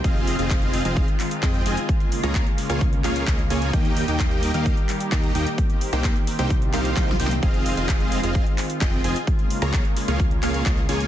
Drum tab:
HH |x--x--o--x--x--x--o--x--x--x--o--x--x--x--o--x--|x--x--o--x--x--x--o--x--x--x--o--x--x--x--o--x--|x--x--o--x--x--x--o--x--x--x--o--x--x--x--o--x--|x--x--o--x--x--x--o--x--x--x--o--x--x--x--o--x--|
CP |------------x-----------------x-----x-----------|------------x-----------------x-----x-----------|------------x-----------------x-----x-----------|------------x-----------------x-----x-----------|
SD |------------------------------------------------|------------------------------------------------|------------------------------------------------|------------------------------------o---o---o---|
BD |o-----------o-----------o-----------o-----------|o-----------o-----------o-----------o-----------|o-----------o-----------o-----------o-----------|o-----------o-----------o-----------o-----------|

HH |x--x--o--x--x--x--o--x--x--x--o--x--x--x--o--x--|x--x--o--x--x--x--o--x--x--x--o--x--x--x--o--x--|
CP |------------x-----------------x-----x-----------|------------x-----------------x-----x-----------|
SD |------------------------------------------------|------------------------------------------------|
BD |o-----------o-----------o-----------o-----------|o-----------o-----------o-----------o-----------|